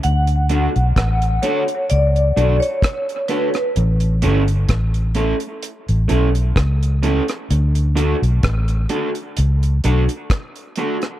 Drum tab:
HH |xxxxxxxxxxxxxxxx|xxxxxxxxxxxxxxxx|xxxxxxxxxxxxxxxx|
SD |----r-------r--r|----r-------r--r|----r-------r--r|
BD |----o-------o---|----o-------o---|----o-------o---|